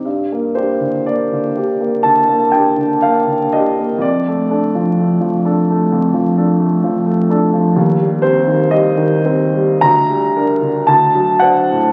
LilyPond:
<<
  \new Staff \with { instrumentName = "Upright piano" } { \time 4/4 \key d \phrygian \tempo 4 = 62 r8 c''8 d''4 a''8 g''8 f''8 ees''8 | d''1 | r8 c''8 ees''4 bes''4 a''8 fis''8 | }
  \new Staff \with { instrumentName = "Upright piano" } { \time 4/4 \key d \phrygian g,16 bes16 <d' g'>16 d16 bes16 d16 <d' g'>16 bes16 d16 bes16 <d' g'>16 d16 bes16 d16 <d' g'>16 bes16 | f,16 a16 <d' a'>16 f16 a16 f16 <d' a'>16 a16 f,16 f16 <d' a'>16 a16 f16 a16 <d' a'>16 f16 | ees,16 g16 c'16 ees16 g16 ees16 <c' c''>16 g16 d,16 g16 <d' bes'>16 d16 d,16 fis16 <d' c''>16 a,16 | }
>>